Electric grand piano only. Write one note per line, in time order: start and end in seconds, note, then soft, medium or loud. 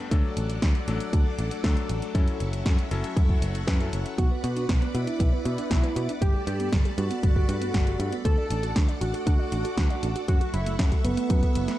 0.12 0.85 F#3 medium
0.12 0.85 A3 medium
0.12 0.85 D4 medium
0.12 0.85 A4 loud
0.88 1.61 F#3 medium
0.88 1.61 A3 medium
0.88 1.61 D4 medium
0.88 1.61 A4 loud
1.64 2.12 F#3 medium
1.64 2.12 A3 medium
1.64 2.12 D4 medium
1.64 2.12 A4 loud
2.15 2.88 F#3 medium
2.15 2.88 C#4 medium
2.15 2.88 E4 medium
2.15 2.88 A4 loud
2.91 3.64 F#3 medium
2.91 3.64 C#4 medium
2.91 3.64 E4 medium
2.91 3.64 A4 medium
3.68 3.77 F#3 medium
3.68 3.77 C#4 medium
3.68 3.77 E4 medium
3.68 3.77 B4 medium
3.80 4.15 F#3 medium
3.80 4.15 C#4 medium
3.80 4.15 E4 medium
3.80 4.15 A4 medium